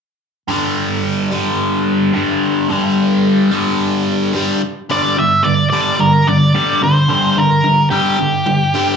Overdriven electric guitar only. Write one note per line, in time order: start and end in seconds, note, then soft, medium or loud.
0.48 1.34 G2 medium
0.48 1.30 D3 medium
0.48 1.31 G3 medium
1.31 2.13 G2 medium
1.31 2.13 D3 medium
1.31 2.16 G3 medium
2.13 2.69 G2 medium
2.13 2.68 D3 medium
2.13 2.73 G3 medium
2.69 3.50 G2 medium
2.69 3.51 D3 medium
2.73 3.50 G3 medium
3.51 4.32 G2 medium
3.51 4.33 D3 medium
3.51 4.32 G3 medium
4.33 4.60 G2 medium
4.33 4.60 D3 medium
4.33 4.61 G3 medium
4.89 5.15 G2 medium
4.89 5.16 D3 medium
4.89 5.16 G3 medium
5.16 5.41 G2 medium
5.16 5.42 D3 medium
5.45 5.69 G2 medium
5.45 5.69 D3 medium
5.72 5.98 G2 medium
5.72 5.98 D3 medium
5.72 5.98 G3 medium
5.99 6.24 G2 medium
5.99 6.24 D3 medium
6.28 6.52 G2 medium
6.28 6.52 D3 medium
6.55 6.80 G2 medium
6.55 6.81 D3 medium
6.55 6.81 G3 medium
6.82 7.07 G2 medium
6.82 7.07 D3 medium
7.09 7.35 G2 medium
7.09 7.35 D3 medium
7.09 7.36 G3 medium
7.37 7.62 G2 medium
7.37 7.62 D3 medium
7.64 7.89 G2 medium
7.64 7.89 D3 medium
7.91 8.17 G2 medium
7.91 8.18 D3 medium
7.91 8.18 G3 medium
8.18 8.44 G2 medium
8.18 8.44 D3 medium
8.46 8.71 G2 medium
8.46 8.71 D3 medium
8.74 8.96 G2 medium
8.74 8.96 D3 medium
8.74 8.96 G3 medium